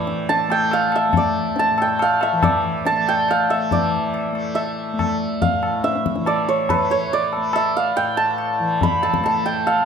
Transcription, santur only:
0.00 1.17 D5 medium
0.00 0.79 E5 medium
0.00 0.51 G5 loud
0.29 1.59 A5 loud
0.51 1.81 G5 medium
0.73 1.02 F5 medium
0.96 2.08 E5 medium
1.17 2.43 D5 medium
1.59 2.86 A5 medium
1.82 3.08 G5 medium
2.02 2.29 F5 medium
2.23 3.37 E5 medium
2.43 3.72 D5 medium
2.86 4.80 A5 loud
3.08 5.16 G5 medium
3.31 3.56 F5 medium
3.50 4.55 E5 medium
3.72 6.19 D5 medium
4.55 5.48 E5 medium
5.42 5.90 F5 medium
5.84 7.55 E5 medium
6.27 6.55 D5 medium
6.49 6.91 C#5 medium
6.70 9.43 B4 medium
6.91 7.19 C#5 medium
7.13 9.60 D5 medium
7.56 7.83 E5 medium
7.77 9.66 F5 medium
7.97 9.45 G5 medium
8.17 9.03 A5 medium
8.83 9.85 B5 loud
9.03 9.25 A5 medium
9.26 9.85 A5 medium
9.46 9.85 G5 medium
9.67 9.85 F5 medium

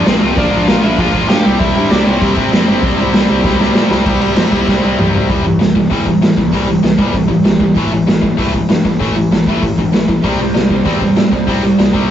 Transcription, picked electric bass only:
0.06 0.17 A#1 loud
0.23 0.33 C2 medium
0.37 0.48 A#1 loud
0.54 0.64 A#1 loud
0.69 0.80 A#1 loud
0.84 0.95 A#1 medium
0.98 1.09 A#1 loud
1.14 1.25 A#1 medium
1.31 1.41 G2 loud
1.46 1.56 C2 loud
1.60 1.71 C2 loud
1.77 1.87 G2 medium
1.92 2.02 C2 loud
2.07 2.17 C2 medium
2.22 2.32 C2 loud
2.37 2.48 C3 medium
2.53 2.63 F2 loud
2.69 2.79 G1 medium
2.83 2.93 C2 loud
2.98 3.09 C2 loud
3.13 3.24 C2 loud
3.30 3.40 C2 medium
3.44 3.55 C2 medium
3.60 3.70 C2 medium
3.74 3.85 A#2 loud
3.90 4.01 C2 medium
4.06 4.16 C2 loud
4.21 4.32 C2 medium
4.37 4.47 F2 loud
4.53 4.63 C2 medium
4.68 4.78 C2 loud
4.85 4.95 C2 medium
5.00 5.10 C2 loud
5.15 5.25 C2 medium
5.30 5.41 C2 medium
5.46 5.57 C2 medium
5.61 5.84 C2 medium
5.91 6.14 E2 medium
6.21 6.33 A2 medium
6.38 6.49 C2 medium
6.53 6.76 C2 loud
6.83 6.95 C2 medium
6.99 7.10 C2 medium
7.14 7.26 C2 medium
7.30 7.41 A1 medium
7.45 7.68 C2 loud
7.76 7.88 A1 medium
7.92 8.04 A1 medium
8.08 8.31 A1 loud
8.39 8.62 C2 medium
8.70 8.81 G2 medium
8.85 8.97 A1 medium
9.01 9.24 A1 loud
9.31 9.43 A1 loud
9.48 9.59 A1 medium
9.62 9.74 A1 medium
9.78 9.90 G1 medium
9.93 10.17 A1 medium
10.24 10.36 C2 medium
10.40 10.52 C2 medium
10.56 10.79 C2 medium
10.86 11.09 E2 medium
11.18 11.29 A2 medium
11.32 11.44 C2 medium
11.48 11.71 C2 medium
11.79 11.91 C2 medium
11.94 12.06 C2 medium

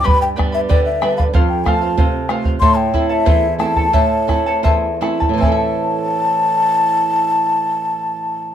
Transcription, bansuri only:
0.06 0.21 B5 loud
0.22 0.29 G5 medium
0.54 0.60 E5 loud
0.69 0.84 D5 medium
0.85 1.15 E5 medium
1.17 1.24 F5 medium
1.48 1.66 G5 medium
1.64 2.28 A5 loud
2.60 2.78 C6 loud
2.76 3.08 G5 medium
3.09 3.55 E5 loud
3.09 3.13 F5 loud
3.59 4.97 A5 loud
5.40 5.57 G#5 loud
5.57 8.55 A5 loud

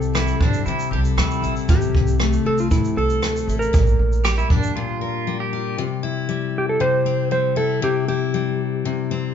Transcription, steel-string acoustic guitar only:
0.00 0.66 C3 medium
0.00 0.14 G3 medium
0.00 0.42 C4 medium
0.00 1.43 E4 medium
0.00 0.93 A4 medium
0.15 1.17 G3 medium
0.42 2.46 C4 medium
0.68 1.68 C3 medium
0.93 2.98 A4 medium
1.18 1.74 G3 medium
1.44 3.49 E4 medium
1.69 2.70 C3 medium
2.20 3.22 A3 medium
2.46 3.79 C4 medium
2.71 3.73 C3 medium
2.98 3.79 A4 medium
3.23 3.79 A3 medium
3.50 3.80 E4 medium
3.73 4.75 A#2 medium
4.26 5.27 G3 medium
4.51 5.84 D4 soft
4.76 5.78 A#2 medium
5.01 5.83 A#4 medium
5.27 6.28 G3 medium
5.53 5.84 F4 medium
5.78 6.79 C3 medium
6.03 7.56 E4 medium
6.29 7.30 G3 medium
6.80 7.81 C3 medium
7.06 9.11 C4 medium
7.31 8.33 G3 medium
7.56 8.08 E4 medium
7.82 8.84 C3 medium
8.08 9.34 E4 medium
8.34 9.34 G3 medium
8.85 9.34 C3 medium
9.11 9.34 C4 medium

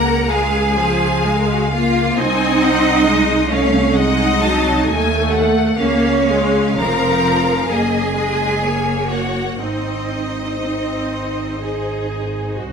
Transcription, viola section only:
0.00 0.31 A#3 loud
0.30 0.77 G#3 medium
0.76 1.24 F3 medium
1.24 1.71 G#3 medium
1.71 2.17 A#3 medium
2.16 3.05 C4 loud
3.05 3.49 G#3 medium
3.51 3.96 A3 medium
3.96 4.41 G#3 loud
4.41 4.86 F#3 loud
4.86 5.78 A3 loud
5.78 6.26 A#3 loud
6.28 6.78 G#3 loud
6.79 7.70 F3 medium
7.70 8.15 A#3 medium
8.15 8.63 G#3 medium
8.62 9.59 A#3 medium
9.59 10.49 C4 medium
10.59 11.57 C4 medium
11.60 12.57 G#4 medium
12.59 12.72 F#4 medium

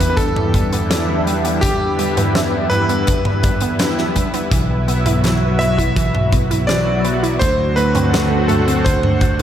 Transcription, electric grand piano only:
0.10 0.17 B4 medium
0.17 1.22 A4 loud
1.61 2.30 G4 loud
2.70 4.11 B4 loud
5.59 6.28 E5 loud
6.67 7.42 D5 loud
7.39 7.77 C5 loud
7.76 8.51 B4 loud
8.48 8.82 A4 medium
8.84 9.42 C5 medium

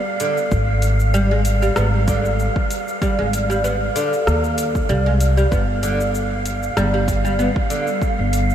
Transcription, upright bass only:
0.52 1.69 G#1 medium
1.77 2.47 G#1 medium
3.19 3.88 G#1 medium
4.27 4.82 D#2 medium
4.90 5.44 C2 loud
5.52 6.69 G1 medium
6.77 7.47 G1 medium
8.19 8.55 G1 medium

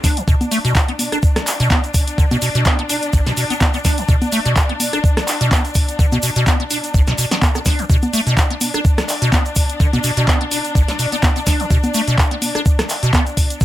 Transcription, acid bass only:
0.04 0.18 D4 medium
0.17 0.23 D3 loud
0.28 0.35 B2 loud
0.51 0.59 A3 loud
0.65 0.73 B2 loud
0.88 0.92 B3 medium
1.12 1.18 D4 medium
1.60 1.69 B2 loud
1.70 1.81 B3 loud
2.18 2.25 D3 medium
2.31 2.37 B2 loud
2.42 2.49 B2 medium
2.55 2.64 B2 loud
2.66 2.77 B3 loud
2.79 2.82 B3 medium
2.89 2.97 D4 medium
3.13 3.21 B1 loud
3.27 3.32 B2 loud
3.37 3.44 B2 medium
3.50 3.54 B3 medium
3.74 3.78 B3 medium
3.85 3.99 D4 medium
3.98 4.04 D3 loud
4.09 4.16 B2 loud
4.32 4.40 A3 loud
4.46 4.54 B2 loud
4.69 4.73 B3 medium
4.93 4.99 D4 medium
5.41 5.50 B2 loud
5.51 5.62 B3 loud
5.99 6.06 D3 medium
6.12 6.18 B2 loud
6.23 6.30 B2 medium
6.36 6.45 B2 loud
6.47 6.58 B3 loud
6.60 6.63 B3 medium
6.71 6.78 D4 medium
6.94 7.02 B1 loud
7.08 7.13 B2 loud
7.18 7.25 B2 medium
7.31 7.35 B3 medium
7.55 7.59 B3 medium
7.66 7.81 D4 medium
7.79 7.85 D3 loud
7.90 7.97 B2 loud
8.13 8.21 A3 loud
8.27 8.35 B2 loud
8.50 8.54 B3 medium
8.74 8.80 D4 medium
9.22 9.31 B2 loud
9.32 9.43 B3 loud
9.80 9.87 D3 medium
9.93 9.99 B2 loud
10.04 10.11 B2 medium
10.17 10.26 B2 loud
10.28 10.39 B3 loud
10.41 10.44 B3 medium
10.51 10.59 D4 medium
10.75 10.83 B1 loud
10.89 10.92 F#3 medium
10.99 11.06 B2 medium
11.12 11.16 B3 medium
11.36 11.40 B3 medium
11.47 11.62 D4 medium
11.60 11.66 D3 loud
11.71 11.78 B2 loud
11.94 12.02 A3 loud
12.08 12.16 B2 loud
12.31 12.35 B3 medium
12.55 12.61 D4 medium
13.03 13.12 B2 loud
13.13 13.24 B3 loud
13.61 13.65 D3 medium

